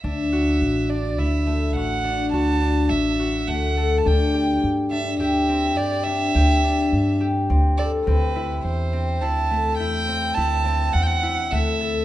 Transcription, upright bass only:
\new Staff \with { instrumentName = "Upright bass" } { \clef bass \time 7/4 \key d \mixolydian \tempo 4 = 104 d,4 a,,4 d,4 a,,4 d,4 a,,4 d,4 | d,4 g,4 d,4 g,4 d,4 g,4 d,4 | d,4 e,4 d,4 e,4 d,4 e,4 d,4 | }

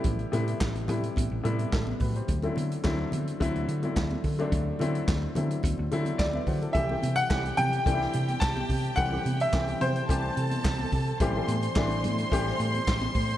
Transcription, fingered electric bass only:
\new Staff \with { instrumentName = "Fingered electric bass" } { \clef bass \time 4/4 \key c \lydian \tempo 4 = 108 a,,8 a,8 a,,8 a,8 a,,16 a,,16 a,8 a,,8 a,8 | d,8 d8 d,8 d8 d,16 d,16 d8 d,8 d8 | d,8 d8 d,8 d8 d,16 d,16 d8 d,8 d8 | c,8 c8 c,8 c8 c,8 c8 c,8 c8 |
c,8 c8 c,8 c8 c,8 c8 c,8 c8 | a,,8 a,8 a,,8 a,8 a,,8 a,8 a,,8 a,8 | }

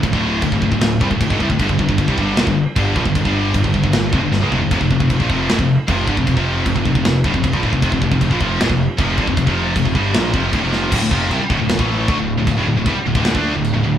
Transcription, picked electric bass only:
\new Staff \with { instrumentName = "Picked electric bass" } { \clef bass \time 4/4 \key d \minor \tempo 4 = 154 d,,16 d,,8. d,,16 d,,16 d,,16 d,,16 d,,8 c,16 d,,16 d,,16 gis,,16 c,16 d,,16 | g,,16 g,,16 g,,16 g,,16 g,,16 c,16 g,,8 f,,16 g,,8 r16 g,,8 bes,,16 g,,16 | g,,16 g,,8. g,,16 g,,16 g,,16 g,,16 g,,8 f,,16 g,,16 g,,16 cis,16 f,,16 g,,16 | f,,16 f,,16 f,,16 f,,16 f,,16 bes,,16 f,,8 d,,16 f,,8 r16 f,,8 g,,16 f,,16 |
f,,16 f,,8. f,,16 f,,16 f,,16 f,,16 f,,8 d,,16 f,,16 f,,16 bes,,16 d,,16 f,,16 | f,,16 f,,16 f,,16 f,,16 f,,16 bes,,16 f,,8 d,,16 f,,8 r16 f,,8 g,,16 f,,16 | f,,16 f,,8. f,,16 f,,16 g,,8 bes,,8 f,,8 d,,16 f,,8. | d,,16 d,,16 f,,8 c,16 r16 d,,16 d,,16 d,,16 a,,8. d,16 d,,8 d,,16 |
d,,16 d,,16 d,,16 d,,16 c,16 r16 d,,16 d,,8 d,8 d,,8 d,,16 d,,8 | }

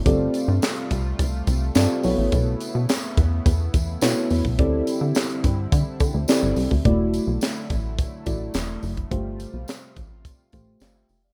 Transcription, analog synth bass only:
\new Staff \with { instrumentName = "Analog synth bass" } { \clef bass \time 4/4 \key e \minor \tempo 4 = 106 g,,8 r16 g,16 r8 c,8 c,8 c,8 g,16 r16 b,,16 a,,16 | b,,8 r16 b,16 r8 e,8 e,8 e,8 b,16 r16 e,16 b,,16 | d,8 r16 d16 r8 g,8 d16 r16 d16 d,16 r16 g,,16 c,16 d,16 | e,,8. b,,16 r8 a,,8. r16 a,,8 e,,8 fis,,8 |
g,,8. b,,16 r8 a,,8. r16 a,,8 g,,8 f,,8 | }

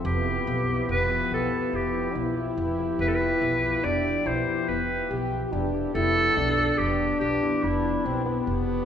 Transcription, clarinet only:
\new Staff \with { instrumentName = "Clarinet" } { \time 7/4 \key e \phrygian \tempo 4 = 142 g'2 b'4 a'4 g'4 r2 | \tuplet 3/2 { b'16 a'16 b'4~ } b'4 d''4 c''4 b'4 r2 | a'2 g'4 g'4 e'2 r4 | }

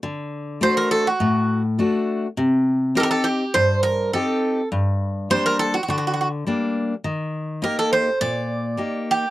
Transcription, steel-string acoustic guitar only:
\new Staff \with { instrumentName = "Steel-string acoustic guitar" } { \time 4/4 \tempo 4 = 103 d4 <a d' fis'>4 a,4 <a d' fis'>4 | c4 <c' ees' g'>4 g,4 <c' ees' g'>4 | g,4 <g bes d'>4 d4 <g bes d'>4 | ees4 <bes ees' g'>4 bes,4 <bes ees' g'>4 | }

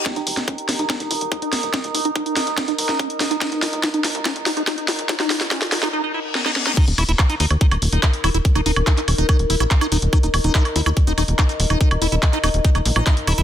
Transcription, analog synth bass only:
\new Staff \with { instrumentName = "Analog synth bass" } { \clef bass \time 4/4 \tempo 4 = 143 r16 ees,,16 ees,,16 ees,,16 r8 ees,16 ees,16 r16 ees,,16 ees,,16 ees,,16 r8 ees,,16 ees,,16 | r16 ees,,16 ees,,16 ees,,16 r8 ees,,16 ees,,16 r16 ees,,16 ees,,16 bes,,16 r8 ees,,16 ees,,16 | r16 ees,,16 ees,,16 ees,,16 r8 ees,16 ees,16 r16 ees,,16 ees,,16 ees,,16 r8 ees,,16 ees,,16 | r16 ees,,16 ees,,16 ees,,16 r8 ees,,16 ees,,16 r2 |
r16 ees,,16 ees,,16 ees,,16 r8 ees,16 ees,16 r16 ees,,16 ees,,16 ees,,16 r8 ees,,16 ees,,16 | r16 ees,,16 ees,,16 ees,,16 r8 ees,,16 ees,,16 r16 ees,,16 ees,,16 bes,,16 r8 ees,,16 ees,,16 | r16 ees,,16 ees,,16 ees,,16 r8 ees,16 ees,16 r16 ees,,16 ees,,16 ees,,16 r8 ees,,16 ees,,16 | r16 ees,,16 ees,,16 ees,,16 r8 ees,,16 ees,,16 r16 ees,,16 bes,,16 bes,,16 r8 ees,,16 ees,,16 | }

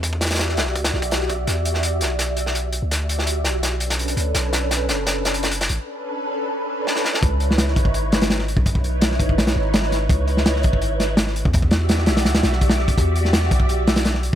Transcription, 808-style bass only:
\new Staff \with { instrumentName = "808-style bass" } { \clef bass \time 4/4 \key cis \phrygian \tempo 4 = 167 e,4. b,,8 d,8 b,,4. | e,4. b,,2~ b,,16 d,16~ | d,4. b,,2 d,8 | b,,4. fis,,2~ fis,,16 a,,16 |
r1 | cis,4. gis,,2~ gis,,16 b,,16~ | b,,4. gis,,8 b,,8 gis,,4. | cis,4. gis,,2~ gis,,16 e,16~ |
e,4. b,,8 d,8 b,,4. | e,4. b,,2~ b,,16 r16 | }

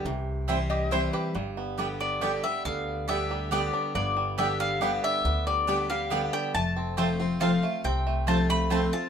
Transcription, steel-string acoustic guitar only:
\new Staff \with { instrumentName = "Steel-string acoustic guitar" } { \time 3/4 \key g \mixolydian \tempo 4 = 139 << { r4 <e g c' e'>4 <e g c' e'>4 | r4 <d g b g'>4 <d g b g'>8 <b g'>8 | r4 <d g b g'>4 <d g b g'>4 | r4 <d g b g'>4 <d g b g'>4 |
r4 <d g b g'>8 <b g'>8 <d g b g'>4 | r4 <f a c' f'>8 <c' f'>8 <f a c' f'>8 <c' f'>8 | r4 <f a c' f'>4 <f a c' f'>8 <c' f'>8 | } \\ { c2 r4 | g,2 r4 | d2 r4 | g,2 r4 |
d2 r4 | f,2 r4 | c2 r4 | } >> }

